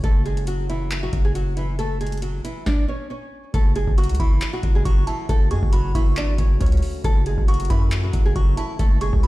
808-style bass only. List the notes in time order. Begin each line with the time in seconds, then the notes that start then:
0.04 F#1
1.13 F#1
3.54 F#1
3.87 F#1
4.09 C#2
4.20 F#1
4.63 F#1
4.85 F#1
5.29 F#1
5.51 F#2
5.63 F#1
5.95 F#1
6.17 G#1
6.39 F#1
6.61 C#2
7.04 F#1
7.38 F#1
7.70 F#2
8.14 F#1
8.36 F#1
8.79 F#1
9.13 C#2